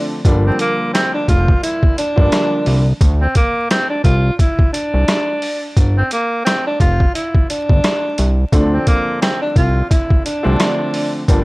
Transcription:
Already playing: D3 F3 A3 C4 D4
0.25 G1 D3 F3 G3 A#3 D4, kick, closed hi-hat
0.46 C4
0.59 A#3, closed hi-hat
0.94 C4, cross-stick, snare, closed hi-hat
1.14 D4
1.28 F1 F4, kick, closed hi-hat
1.48 kick
1.63 E4, closed hi-hat
1.83 kick
1.98 D4, closed hi-hat
2.16 G1 D3 F3 G3 A#3 D4, kick
2.32 cross-stick, snare, closed hi-hat
2.66 C2, open hi-hat
3.01 D2, kick, closed hi-hat
3.21 C4
3.35 A#3, kick, closed hi-hat
3.70 C4, cross-stick, snare, closed hi-hat
3.90 D4
4.04 C2 F4, kick, closed hi-hat
4.39 E4, kick, closed hi-hat
4.59 kick
4.73 D4, closed hi-hat
4.94 C2
5.08 cross-stick, snare, closed hi-hat
5.42 open hi-hat
5.77 G1, kick, closed hi-hat
5.97 C4
6.11 A#3, closed hi-hat
6.45 C4, cross-stick, snare, closed hi-hat
6.67 D4
6.80 F1 F4, kick, closed hi-hat
7.00 kick
7.15 E4, closed hi-hat
7.35 kick
7.50 D4, closed hi-hat
7.69 G1, kick
7.84 cross-stick, snare, closed hi-hat
8.18 C2, closed hi-hat
8.52 D2 D3 F3 C4 D4 A4, kick, closed hi-hat
8.73 C4
8.87 A#3, kick, closed hi-hat
9.22 C4, cross-stick, snare, closed hi-hat
9.41 D4
9.56 C2 F4, kick, closed hi-hat
9.90 E4, kick, closed hi-hat
10.10 kick
10.25 D4, closed hi-hat
10.43 C2 D3 F3 A3 C4 D4
10.60 cross-stick, snare, closed hi-hat
10.94 open hi-hat
11.28 G1 D3 F3 G3 A#3 D4, kick, closed hi-hat

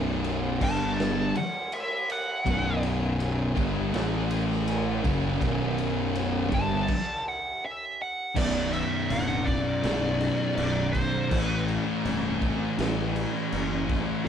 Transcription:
Already playing: B0 B1 F#2 B2
0.24 ride
0.61 G1 G2 D3 G3 A5, kick, crash
1.00 snare
1.35 F#5, ride
1.72 E5, ride
2.10 F#5, ride
2.46 B0 B1 F#2 B2, kick, ride
2.83 ride
3.20 ride
3.56 G1 G2 D3 G3, kick, ride
3.93 A1 A2 E3 A3, snare, ride
4.31 ride
4.51 snare
4.68 ride
5.04 F#1 F#2 C#3 F#3, kick, ride
5.41 B0 B1 F#2 B2, kick, ride
5.78 ride
6.15 ride
6.52 G1 G2 D3 G3 A5, kick, ride
6.88 kick, crash
7.28 F#5
7.66 E5
8.02 F#5
8.35 B0 B1 F#2 B2 D5, kick, crash
8.73 E5, crash
9.08 D1 F#5, crash
9.45 D5, kick, crash
9.83 B0 B1 F#2 B2, snare, crash
10.21 crash
10.55 B0 D5, crash
10.92 C5, kick, crash
11.29 A1 A2 E3 A3, kick, crash
11.41 B4
11.68 crash
12.05 C1, crash
12.42 kick, crash
12.78 A1 A2 E3 A3, snare, crash
13.16 crash
13.52 F#1, crash
13.89 kick, snare, crash
14.24 E2

